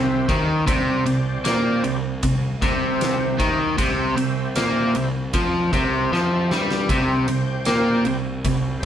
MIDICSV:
0, 0, Header, 1, 5, 480
1, 0, Start_track
1, 0, Key_signature, 0, "major"
1, 0, Tempo, 777202
1, 417, Time_signature, 4, 2, 24, 8
1, 5466, End_track
2, 0, Start_track
2, 0, Title_t, "Tonewheel organ"
2, 0, Program_c, 0, 16
2, 0, Note_on_c, 0, 67, 73
2, 0, Note_on_c, 0, 72, 74
2, 0, Note_on_c, 0, 76, 85
2, 283, Note_off_c, 0, 67, 0
2, 284, Note_off_c, 0, 72, 0
2, 287, Note_off_c, 0, 76, 0
2, 416, Note_on_c, 0, 74, 86
2, 417, Note_on_c, 0, 72, 72
2, 421, Note_on_c, 0, 67, 85
2, 1213, Note_off_c, 0, 72, 0
2, 1213, Note_off_c, 0, 74, 0
2, 1215, Note_off_c, 0, 67, 0
2, 1626, Note_on_c, 0, 72, 69
2, 1631, Note_on_c, 0, 67, 78
2, 1631, Note_on_c, 0, 76, 84
2, 2219, Note_off_c, 0, 72, 0
2, 2221, Note_off_c, 0, 67, 0
2, 2221, Note_off_c, 0, 76, 0
2, 2340, Note_on_c, 0, 67, 78
2, 2345, Note_on_c, 0, 72, 72
2, 2355, Note_on_c, 0, 76, 90
2, 3134, Note_off_c, 0, 67, 0
2, 3137, Note_off_c, 0, 72, 0
2, 3142, Note_off_c, 0, 76, 0
2, 3522, Note_on_c, 0, 72, 67
2, 3526, Note_on_c, 0, 67, 76
2, 3529, Note_on_c, 0, 76, 81
2, 4126, Note_off_c, 0, 72, 0
2, 4128, Note_off_c, 0, 67, 0
2, 4130, Note_off_c, 0, 76, 0
2, 4250, Note_on_c, 0, 67, 79
2, 4253, Note_on_c, 0, 72, 72
2, 4255, Note_on_c, 0, 79, 86
2, 5048, Note_off_c, 0, 67, 0
2, 5050, Note_off_c, 0, 72, 0
2, 5051, Note_off_c, 0, 79, 0
2, 5433, Note_on_c, 0, 72, 73
2, 5434, Note_on_c, 0, 67, 76
2, 5440, Note_on_c, 0, 76, 82
2, 5466, Note_off_c, 0, 67, 0
2, 5466, Note_off_c, 0, 72, 0
2, 5466, Note_off_c, 0, 76, 0
2, 5466, End_track
3, 0, Start_track
3, 0, Title_t, "Overdriven electric guitar"
3, 0, Program_c, 1, 29
3, 0, Note_on_c, 1, 48, 96
3, 167, Note_off_c, 1, 48, 0
3, 175, Note_on_c, 1, 51, 97
3, 408, Note_off_c, 1, 51, 0
3, 410, Note_on_c, 1, 48, 104
3, 647, Note_off_c, 1, 48, 0
3, 653, Note_on_c, 1, 48, 69
3, 847, Note_off_c, 1, 48, 0
3, 892, Note_on_c, 1, 58, 95
3, 1128, Note_off_c, 1, 58, 0
3, 1135, Note_on_c, 1, 48, 70
3, 1328, Note_off_c, 1, 48, 0
3, 1378, Note_on_c, 1, 48, 67
3, 1570, Note_off_c, 1, 48, 0
3, 1619, Note_on_c, 1, 48, 96
3, 2091, Note_off_c, 1, 48, 0
3, 2095, Note_on_c, 1, 51, 92
3, 2329, Note_off_c, 1, 51, 0
3, 2333, Note_on_c, 1, 48, 100
3, 2566, Note_off_c, 1, 48, 0
3, 2573, Note_on_c, 1, 48, 67
3, 2768, Note_off_c, 1, 48, 0
3, 2818, Note_on_c, 1, 58, 96
3, 3051, Note_off_c, 1, 58, 0
3, 3060, Note_on_c, 1, 48, 70
3, 3251, Note_off_c, 1, 48, 0
3, 3299, Note_on_c, 1, 53, 97
3, 3531, Note_off_c, 1, 53, 0
3, 3539, Note_on_c, 1, 48, 94
3, 3771, Note_off_c, 1, 48, 0
3, 3784, Note_on_c, 1, 53, 94
3, 4013, Note_off_c, 1, 53, 0
3, 4025, Note_on_c, 1, 55, 94
3, 4254, Note_off_c, 1, 55, 0
3, 4260, Note_on_c, 1, 48, 104
3, 4491, Note_off_c, 1, 48, 0
3, 4498, Note_on_c, 1, 48, 66
3, 4689, Note_off_c, 1, 48, 0
3, 4734, Note_on_c, 1, 58, 100
3, 4968, Note_off_c, 1, 58, 0
3, 4980, Note_on_c, 1, 48, 67
3, 5170, Note_off_c, 1, 48, 0
3, 5219, Note_on_c, 1, 48, 65
3, 5409, Note_off_c, 1, 48, 0
3, 5466, End_track
4, 0, Start_track
4, 0, Title_t, "Picked electric bass"
4, 0, Program_c, 2, 34
4, 0, Note_on_c, 2, 36, 90
4, 151, Note_off_c, 2, 36, 0
4, 181, Note_on_c, 2, 39, 89
4, 402, Note_off_c, 2, 39, 0
4, 417, Note_on_c, 2, 36, 89
4, 640, Note_off_c, 2, 36, 0
4, 661, Note_on_c, 2, 36, 76
4, 882, Note_off_c, 2, 36, 0
4, 905, Note_on_c, 2, 46, 88
4, 1124, Note_off_c, 2, 46, 0
4, 1142, Note_on_c, 2, 36, 77
4, 1363, Note_off_c, 2, 36, 0
4, 1378, Note_on_c, 2, 36, 70
4, 1601, Note_off_c, 2, 36, 0
4, 1618, Note_on_c, 2, 36, 89
4, 2073, Note_off_c, 2, 36, 0
4, 2097, Note_on_c, 2, 39, 91
4, 2321, Note_off_c, 2, 39, 0
4, 2333, Note_on_c, 2, 36, 89
4, 2559, Note_off_c, 2, 36, 0
4, 2572, Note_on_c, 2, 36, 75
4, 2798, Note_off_c, 2, 36, 0
4, 2815, Note_on_c, 2, 46, 84
4, 3040, Note_off_c, 2, 46, 0
4, 3060, Note_on_c, 2, 36, 74
4, 3282, Note_off_c, 2, 36, 0
4, 3297, Note_on_c, 2, 41, 86
4, 3521, Note_off_c, 2, 41, 0
4, 3542, Note_on_c, 2, 36, 83
4, 3763, Note_off_c, 2, 36, 0
4, 3777, Note_on_c, 2, 41, 89
4, 4000, Note_off_c, 2, 41, 0
4, 4020, Note_on_c, 2, 43, 80
4, 4242, Note_off_c, 2, 43, 0
4, 4259, Note_on_c, 2, 36, 81
4, 4481, Note_off_c, 2, 36, 0
4, 4498, Note_on_c, 2, 36, 72
4, 4721, Note_off_c, 2, 36, 0
4, 4739, Note_on_c, 2, 46, 88
4, 4961, Note_off_c, 2, 46, 0
4, 4973, Note_on_c, 2, 36, 76
4, 5197, Note_off_c, 2, 36, 0
4, 5218, Note_on_c, 2, 36, 71
4, 5440, Note_off_c, 2, 36, 0
4, 5466, End_track
5, 0, Start_track
5, 0, Title_t, "Drums"
5, 178, Note_on_c, 9, 36, 104
5, 181, Note_on_c, 9, 51, 61
5, 240, Note_off_c, 9, 36, 0
5, 243, Note_off_c, 9, 51, 0
5, 417, Note_on_c, 9, 36, 105
5, 420, Note_on_c, 9, 51, 83
5, 479, Note_off_c, 9, 36, 0
5, 482, Note_off_c, 9, 51, 0
5, 657, Note_on_c, 9, 51, 62
5, 718, Note_off_c, 9, 51, 0
5, 895, Note_on_c, 9, 51, 81
5, 902, Note_on_c, 9, 38, 98
5, 956, Note_off_c, 9, 51, 0
5, 963, Note_off_c, 9, 38, 0
5, 1137, Note_on_c, 9, 51, 62
5, 1198, Note_off_c, 9, 51, 0
5, 1376, Note_on_c, 9, 51, 90
5, 1378, Note_on_c, 9, 36, 86
5, 1437, Note_off_c, 9, 51, 0
5, 1440, Note_off_c, 9, 36, 0
5, 1619, Note_on_c, 9, 36, 104
5, 1620, Note_on_c, 9, 51, 65
5, 1681, Note_off_c, 9, 36, 0
5, 1682, Note_off_c, 9, 51, 0
5, 1859, Note_on_c, 9, 51, 83
5, 1866, Note_on_c, 9, 38, 95
5, 1921, Note_off_c, 9, 51, 0
5, 1928, Note_off_c, 9, 38, 0
5, 2098, Note_on_c, 9, 36, 99
5, 2098, Note_on_c, 9, 51, 66
5, 2160, Note_off_c, 9, 36, 0
5, 2160, Note_off_c, 9, 51, 0
5, 2337, Note_on_c, 9, 36, 98
5, 2337, Note_on_c, 9, 51, 94
5, 2399, Note_off_c, 9, 36, 0
5, 2399, Note_off_c, 9, 51, 0
5, 2578, Note_on_c, 9, 51, 73
5, 2640, Note_off_c, 9, 51, 0
5, 2813, Note_on_c, 9, 51, 85
5, 2820, Note_on_c, 9, 38, 99
5, 2875, Note_off_c, 9, 51, 0
5, 2882, Note_off_c, 9, 38, 0
5, 3055, Note_on_c, 9, 51, 65
5, 3117, Note_off_c, 9, 51, 0
5, 3294, Note_on_c, 9, 51, 87
5, 3297, Note_on_c, 9, 36, 102
5, 3356, Note_off_c, 9, 51, 0
5, 3358, Note_off_c, 9, 36, 0
5, 3538, Note_on_c, 9, 36, 98
5, 3542, Note_on_c, 9, 51, 68
5, 3600, Note_off_c, 9, 36, 0
5, 3604, Note_off_c, 9, 51, 0
5, 3789, Note_on_c, 9, 38, 54
5, 3850, Note_off_c, 9, 38, 0
5, 4022, Note_on_c, 9, 38, 82
5, 4084, Note_off_c, 9, 38, 0
5, 4141, Note_on_c, 9, 38, 83
5, 4203, Note_off_c, 9, 38, 0
5, 4257, Note_on_c, 9, 36, 103
5, 4260, Note_on_c, 9, 51, 80
5, 4319, Note_off_c, 9, 36, 0
5, 4322, Note_off_c, 9, 51, 0
5, 4495, Note_on_c, 9, 51, 67
5, 4556, Note_off_c, 9, 51, 0
5, 4726, Note_on_c, 9, 51, 81
5, 4733, Note_on_c, 9, 38, 94
5, 4788, Note_off_c, 9, 51, 0
5, 4795, Note_off_c, 9, 38, 0
5, 4971, Note_on_c, 9, 51, 59
5, 5033, Note_off_c, 9, 51, 0
5, 5216, Note_on_c, 9, 36, 86
5, 5216, Note_on_c, 9, 51, 86
5, 5278, Note_off_c, 9, 36, 0
5, 5278, Note_off_c, 9, 51, 0
5, 5466, End_track
0, 0, End_of_file